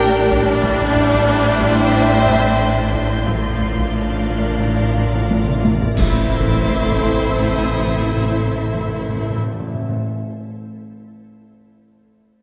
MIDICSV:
0, 0, Header, 1, 15, 480
1, 0, Start_track
1, 0, Tempo, 650759
1, 472, Time_signature, 4, 2, 24, 8
1, 1918, Tempo, 675676
1, 4318, Tempo, 654308
1, 9047, End_track
2, 0, Start_track
2, 0, Title_t, "Celesta"
2, 0, Program_c, 0, 8
2, 0, Control_c, 0, 64, 127
2, 0, Note_on_c, 0, 96, 110
2, 450, Note_off_c, 0, 96, 0
2, 466, Note_on_c, 0, 93, 79
2, 486, Control_c, 0, 64, 0
2, 592, Control_c, 0, 64, 127
2, 1886, Note_off_c, 0, 93, 0
2, 2409, Control_c, 0, 64, 0
2, 2513, Control_c, 0, 64, 127
2, 2648, Note_on_c, 0, 96, 45
2, 4057, Note_off_c, 0, 96, 0
2, 4331, Control_c, 0, 64, 0
2, 4464, Control_c, 0, 64, 127
2, 6246, Control_c, 0, 64, 0
2, 9047, End_track
3, 0, Start_track
3, 0, Title_t, "Violin section"
3, 0, Program_c, 1, 48
3, 0, Note_on_c, 1, 88, 79
3, 0, Note_on_c, 1, 90, 78
3, 0, Note_on_c, 1, 91, 75
3, 200, Note_off_c, 1, 90, 0
3, 202, Note_off_c, 1, 88, 0
3, 203, Note_off_c, 1, 91, 0
3, 478, Note_on_c, 1, 84, 78
3, 491, Note_on_c, 1, 91, 76
3, 3577, Note_off_c, 1, 91, 0
3, 4055, Note_off_c, 1, 84, 0
3, 4305, Note_on_c, 1, 84, 65
3, 4306, Note_on_c, 1, 86, 66
3, 5265, Note_on_c, 1, 87, 60
3, 5479, Note_off_c, 1, 86, 0
3, 5955, Note_off_c, 1, 84, 0
3, 5957, Note_off_c, 1, 87, 0
3, 9047, End_track
4, 0, Start_track
4, 0, Title_t, "Violin section"
4, 0, Program_c, 2, 48
4, 0, Note_on_c, 2, 79, 111
4, 440, Note_off_c, 2, 79, 0
4, 464, Note_on_c, 2, 76, 104
4, 2363, Note_off_c, 2, 76, 0
4, 2377, Note_on_c, 2, 77, 65
4, 4136, Note_off_c, 2, 77, 0
4, 4311, Note_on_c, 2, 76, 76
4, 6785, Note_off_c, 2, 76, 0
4, 9047, End_track
5, 0, Start_track
5, 0, Title_t, "Violin section"
5, 0, Program_c, 3, 48
5, 0, Note_on_c, 3, 70, 116
5, 439, Note_off_c, 3, 70, 0
5, 473, Note_on_c, 3, 72, 102
5, 2368, Note_off_c, 3, 72, 0
5, 2397, Note_on_c, 3, 70, 65
5, 4146, Note_off_c, 3, 70, 0
5, 4319, Note_on_c, 3, 72, 77
5, 6789, Note_off_c, 3, 72, 0
5, 9047, End_track
6, 0, Start_track
6, 0, Title_t, "Ambient pad"
6, 0, Program_c, 4, 92
6, 0, Note_on_c, 4, 67, 75
6, 0, Note_on_c, 4, 70, 80
6, 0, Note_on_c, 4, 74, 74
6, 468, Note_on_c, 4, 64, 77
6, 468, Note_on_c, 4, 72, 76
6, 472, Note_off_c, 4, 67, 0
6, 472, Note_off_c, 4, 70, 0
6, 2380, Note_off_c, 4, 74, 0
6, 2389, Note_on_c, 4, 74, 70
6, 2392, Note_on_c, 4, 65, 67
6, 2394, Note_off_c, 4, 64, 0
6, 2394, Note_off_c, 4, 72, 0
6, 2397, Note_on_c, 4, 70, 67
6, 4287, Note_off_c, 4, 74, 0
6, 4317, Note_off_c, 4, 65, 0
6, 4317, Note_on_c, 4, 64, 80
6, 4317, Note_on_c, 4, 72, 68
6, 4319, Note_off_c, 4, 70, 0
6, 4323, Note_on_c, 4, 69, 75
6, 6788, Note_off_c, 4, 64, 0
6, 6788, Note_off_c, 4, 72, 0
6, 6791, Note_off_c, 4, 69, 0
6, 9047, End_track
7, 0, Start_track
7, 0, Title_t, "French horn section"
7, 0, Program_c, 5, 60
7, 0, Note_on_c, 5, 62, 116
7, 0, Note_on_c, 5, 67, 123
7, 439, Note_off_c, 5, 67, 0
7, 466, Note_on_c, 5, 64, 111
7, 2364, Note_off_c, 5, 64, 0
7, 2366, Note_off_c, 5, 62, 0
7, 2382, Note_on_c, 5, 62, 71
7, 2389, Note_on_c, 5, 65, 71
7, 4049, Note_off_c, 5, 62, 0
7, 4053, Note_off_c, 5, 65, 0
7, 4308, Note_on_c, 5, 69, 80
7, 4310, Note_on_c, 5, 60, 86
7, 6784, Note_off_c, 5, 69, 0
7, 6785, Note_off_c, 5, 60, 0
7, 9047, End_track
8, 0, Start_track
8, 0, Title_t, "Viola section"
8, 0, Program_c, 6, 48
8, 0, Note_on_c, 6, 62, 117
8, 2365, Note_off_c, 6, 62, 0
8, 2383, Note_on_c, 6, 62, 72
8, 4139, Note_off_c, 6, 62, 0
8, 4308, Note_on_c, 6, 64, 85
8, 6783, Note_off_c, 6, 64, 0
8, 9047, End_track
9, 0, Start_track
9, 0, Title_t, "Trombone section"
9, 0, Program_c, 7, 61
9, 0, Note_on_c, 7, 55, 124
9, 0, Note_on_c, 7, 62, 127
9, 339, Note_off_c, 7, 62, 0
9, 464, Note_on_c, 7, 60, 118
9, 2361, Note_off_c, 7, 55, 0
9, 2364, Note_off_c, 7, 60, 0
9, 2381, Note_on_c, 7, 62, 71
9, 2385, Note_on_c, 7, 53, 72
9, 4049, Note_off_c, 7, 62, 0
9, 4051, Note_off_c, 7, 53, 0
9, 4306, Note_on_c, 7, 52, 83
9, 4311, Note_on_c, 7, 57, 86
9, 6783, Note_off_c, 7, 52, 0
9, 6785, Note_off_c, 7, 57, 0
9, 9047, End_track
10, 0, Start_track
10, 0, Title_t, "Cello section"
10, 0, Program_c, 8, 48
10, 0, Note_on_c, 8, 45, 98
10, 442, Note_off_c, 8, 45, 0
10, 463, Note_on_c, 8, 45, 107
10, 4141, Note_off_c, 8, 45, 0
10, 4316, Note_on_c, 8, 45, 81
10, 6788, Note_off_c, 8, 45, 0
10, 9047, End_track
11, 0, Start_track
11, 0, Title_t, "Timpani"
11, 0, Program_c, 10, 47
11, 2498, Note_on_c, 10, 45, 41
11, 2545, Note_off_c, 10, 45, 0
11, 2662, Note_on_c, 10, 45, 46
11, 2708, Note_off_c, 10, 45, 0
11, 2887, Note_on_c, 10, 45, 52
11, 2937, Note_off_c, 10, 45, 0
11, 2946, Note_on_c, 10, 45, 51
11, 2992, Note_off_c, 10, 45, 0
11, 3061, Note_on_c, 10, 45, 53
11, 3101, Note_off_c, 10, 45, 0
11, 3109, Note_on_c, 10, 45, 52
11, 3158, Note_off_c, 10, 45, 0
11, 3166, Note_on_c, 10, 45, 54
11, 3212, Note_off_c, 10, 45, 0
11, 3220, Note_on_c, 10, 45, 54
11, 3271, Note_off_c, 10, 45, 0
11, 3279, Note_on_c, 10, 45, 64
11, 3320, Note_off_c, 10, 45, 0
11, 3329, Note_on_c, 10, 45, 65
11, 3379, Note_off_c, 10, 45, 0
11, 3387, Note_on_c, 10, 45, 65
11, 3437, Note_off_c, 10, 45, 0
11, 3445, Note_on_c, 10, 45, 68
11, 3490, Note_off_c, 10, 45, 0
11, 3499, Note_on_c, 10, 45, 73
11, 3542, Note_off_c, 10, 45, 0
11, 3550, Note_on_c, 10, 45, 76
11, 3593, Note_off_c, 10, 45, 0
11, 3602, Note_on_c, 10, 45, 75
11, 3648, Note_off_c, 10, 45, 0
11, 3656, Note_on_c, 10, 45, 75
11, 3704, Note_off_c, 10, 45, 0
11, 3713, Note_on_c, 10, 45, 85
11, 3757, Note_off_c, 10, 45, 0
11, 3766, Note_on_c, 10, 45, 87
11, 3811, Note_off_c, 10, 45, 0
11, 3820, Note_on_c, 10, 45, 88
11, 3867, Note_off_c, 10, 45, 0
11, 3876, Note_on_c, 10, 45, 90
11, 3928, Note_off_c, 10, 45, 0
11, 3936, Note_on_c, 10, 45, 93
11, 3978, Note_off_c, 10, 45, 0
11, 3987, Note_on_c, 10, 45, 90
11, 4036, Note_off_c, 10, 45, 0
11, 4044, Note_on_c, 10, 45, 94
11, 4088, Note_off_c, 10, 45, 0
11, 4097, Note_on_c, 10, 45, 95
11, 4144, Note_off_c, 10, 45, 0
11, 4153, Note_on_c, 10, 45, 98
11, 4195, Note_off_c, 10, 45, 0
11, 4204, Note_on_c, 10, 45, 99
11, 4263, Note_off_c, 10, 45, 0
11, 4304, Note_on_c, 10, 45, 95
11, 4357, Note_off_c, 10, 45, 0
11, 4359, Note_on_c, 10, 45, 89
11, 4413, Note_off_c, 10, 45, 0
11, 4414, Note_on_c, 10, 45, 90
11, 4468, Note_off_c, 10, 45, 0
11, 4468, Note_on_c, 10, 45, 84
11, 4520, Note_off_c, 10, 45, 0
11, 4520, Note_on_c, 10, 45, 95
11, 4574, Note_off_c, 10, 45, 0
11, 4576, Note_on_c, 10, 45, 86
11, 4626, Note_off_c, 10, 45, 0
11, 4626, Note_on_c, 10, 45, 99
11, 4678, Note_off_c, 10, 45, 0
11, 4678, Note_on_c, 10, 45, 86
11, 4728, Note_off_c, 10, 45, 0
11, 4728, Note_on_c, 10, 45, 95
11, 4781, Note_off_c, 10, 45, 0
11, 4783, Note_on_c, 10, 45, 95
11, 4836, Note_off_c, 10, 45, 0
11, 4836, Note_on_c, 10, 45, 94
11, 4886, Note_off_c, 10, 45, 0
11, 4886, Note_on_c, 10, 45, 90
11, 4940, Note_off_c, 10, 45, 0
11, 4944, Note_on_c, 10, 45, 97
11, 4998, Note_off_c, 10, 45, 0
11, 5004, Note_on_c, 10, 45, 90
11, 5058, Note_off_c, 10, 45, 0
11, 5061, Note_on_c, 10, 45, 98
11, 5114, Note_off_c, 10, 45, 0
11, 5114, Note_on_c, 10, 45, 83
11, 5168, Note_off_c, 10, 45, 0
11, 5169, Note_on_c, 10, 45, 94
11, 5219, Note_off_c, 10, 45, 0
11, 5219, Note_on_c, 10, 45, 85
11, 5272, Note_off_c, 10, 45, 0
11, 5272, Note_on_c, 10, 45, 92
11, 5324, Note_off_c, 10, 45, 0
11, 5324, Note_on_c, 10, 45, 88
11, 5378, Note_off_c, 10, 45, 0
11, 5381, Note_on_c, 10, 45, 85
11, 5435, Note_off_c, 10, 45, 0
11, 5436, Note_on_c, 10, 45, 84
11, 5490, Note_off_c, 10, 45, 0
11, 5491, Note_on_c, 10, 45, 93
11, 5545, Note_off_c, 10, 45, 0
11, 5545, Note_on_c, 10, 45, 87
11, 5598, Note_off_c, 10, 45, 0
11, 5598, Note_on_c, 10, 45, 89
11, 5648, Note_off_c, 10, 45, 0
11, 5648, Note_on_c, 10, 45, 89
11, 5702, Note_off_c, 10, 45, 0
11, 5704, Note_on_c, 10, 45, 87
11, 5758, Note_off_c, 10, 45, 0
11, 5759, Note_on_c, 10, 45, 89
11, 5813, Note_off_c, 10, 45, 0
11, 5813, Note_on_c, 10, 45, 83
11, 5867, Note_off_c, 10, 45, 0
11, 5871, Note_on_c, 10, 45, 80
11, 5925, Note_off_c, 10, 45, 0
11, 5926, Note_on_c, 10, 45, 93
11, 5977, Note_off_c, 10, 45, 0
11, 5977, Note_on_c, 10, 45, 87
11, 6027, Note_off_c, 10, 45, 0
11, 6027, Note_on_c, 10, 45, 91
11, 6079, Note_off_c, 10, 45, 0
11, 6079, Note_on_c, 10, 45, 91
11, 6132, Note_off_c, 10, 45, 0
11, 6132, Note_on_c, 10, 45, 82
11, 6182, Note_off_c, 10, 45, 0
11, 6182, Note_on_c, 10, 45, 96
11, 6236, Note_off_c, 10, 45, 0
11, 6240, Note_on_c, 10, 45, 91
11, 6287, Note_off_c, 10, 45, 0
11, 6287, Note_on_c, 10, 45, 78
11, 6339, Note_off_c, 10, 45, 0
11, 6339, Note_on_c, 10, 45, 86
11, 6389, Note_off_c, 10, 45, 0
11, 6389, Note_on_c, 10, 45, 82
11, 6443, Note_off_c, 10, 45, 0
11, 6445, Note_on_c, 10, 45, 94
11, 6494, Note_off_c, 10, 45, 0
11, 6494, Note_on_c, 10, 45, 81
11, 6548, Note_off_c, 10, 45, 0
11, 6548, Note_on_c, 10, 45, 84
11, 6598, Note_off_c, 10, 45, 0
11, 6598, Note_on_c, 10, 45, 86
11, 6647, Note_off_c, 10, 45, 0
11, 6647, Note_on_c, 10, 45, 92
11, 6700, Note_off_c, 10, 45, 0
11, 6700, Note_on_c, 10, 45, 86
11, 6753, Note_off_c, 10, 45, 0
11, 6753, Note_on_c, 10, 45, 79
11, 6806, Note_off_c, 10, 45, 0
11, 6806, Note_on_c, 10, 45, 79
11, 6857, Note_off_c, 10, 45, 0
11, 6857, Note_on_c, 10, 45, 87
11, 6911, Note_off_c, 10, 45, 0
11, 6916, Note_on_c, 10, 45, 90
11, 6969, Note_off_c, 10, 45, 0
11, 6969, Note_on_c, 10, 45, 97
11, 7023, Note_off_c, 10, 45, 0
11, 7026, Note_on_c, 10, 45, 88
11, 7080, Note_off_c, 10, 45, 0
11, 7081, Note_on_c, 10, 45, 92
11, 7133, Note_off_c, 10, 45, 0
11, 7133, Note_on_c, 10, 45, 89
11, 7187, Note_off_c, 10, 45, 0
11, 7187, Note_on_c, 10, 45, 96
11, 7240, Note_off_c, 10, 45, 0
11, 7240, Note_on_c, 10, 45, 79
11, 7294, Note_off_c, 10, 45, 0
11, 9047, End_track
12, 0, Start_track
12, 0, Title_t, "Double bass section"
12, 0, Program_c, 11, 48
12, 0, Note_on_c, 11, 33, 95
12, 444, Note_off_c, 11, 33, 0
12, 478, Note_on_c, 11, 33, 97
12, 4148, Note_off_c, 11, 33, 0
12, 4326, Note_on_c, 11, 33, 80
12, 6793, Note_off_c, 11, 33, 0
12, 9047, End_track
13, 0, Start_track
13, 0, Title_t, "Sub bass"
13, 0, Program_c, 12, 38
13, 0, Note_on_c, 12, 33, 90
13, 437, Note_off_c, 12, 33, 0
13, 451, Note_on_c, 12, 33, 94
13, 4280, Note_off_c, 12, 33, 0
13, 4318, Note_on_c, 12, 33, 91
13, 6789, Note_off_c, 12, 33, 0
13, 9047, End_track
14, 0, Start_track
14, 0, Title_t, "Taiko and cinematic ensemble drums"
14, 235, Note_on_c, 9, 41, 93
14, 309, Note_off_c, 9, 41, 0
14, 469, Note_on_c, 9, 41, 104
14, 543, Note_off_c, 9, 41, 0
14, 589, Note_on_c, 9, 43, 57
14, 663, Note_off_c, 9, 43, 0
14, 705, Note_on_c, 9, 43, 66
14, 779, Note_off_c, 9, 43, 0
14, 824, Note_on_c, 9, 41, 95
14, 898, Note_off_c, 9, 41, 0
14, 1187, Note_on_c, 9, 41, 92
14, 1260, Note_off_c, 9, 41, 0
14, 1668, Note_on_c, 9, 43, 70
14, 1742, Note_off_c, 9, 43, 0
14, 2153, Note_on_c, 9, 41, 80
14, 2224, Note_off_c, 9, 41, 0
14, 2395, Note_on_c, 9, 41, 99
14, 2466, Note_off_c, 9, 41, 0
14, 2520, Note_on_c, 9, 43, 57
14, 2591, Note_off_c, 9, 43, 0
14, 2638, Note_on_c, 9, 43, 60
14, 2709, Note_off_c, 9, 43, 0
14, 2756, Note_on_c, 9, 41, 82
14, 2827, Note_off_c, 9, 41, 0
14, 3119, Note_on_c, 9, 41, 77
14, 3190, Note_off_c, 9, 41, 0
14, 3597, Note_on_c, 9, 43, 60
14, 3668, Note_off_c, 9, 43, 0
14, 3842, Note_on_c, 9, 48, 88
14, 3913, Note_off_c, 9, 48, 0
14, 3961, Note_on_c, 9, 47, 90
14, 4032, Note_off_c, 9, 47, 0
14, 4083, Note_on_c, 9, 48, 88
14, 4154, Note_off_c, 9, 48, 0
14, 4202, Note_on_c, 9, 43, 95
14, 4273, Note_off_c, 9, 43, 0
14, 4324, Note_on_c, 9, 41, 113
14, 4398, Note_off_c, 9, 41, 0
14, 9047, End_track
15, 0, Start_track
15, 0, Title_t, "Drums"
15, 4312, Note_on_c, 9, 35, 84
15, 4312, Note_on_c, 9, 49, 77
15, 4385, Note_off_c, 9, 35, 0
15, 4385, Note_off_c, 9, 49, 0
15, 9047, End_track
0, 0, End_of_file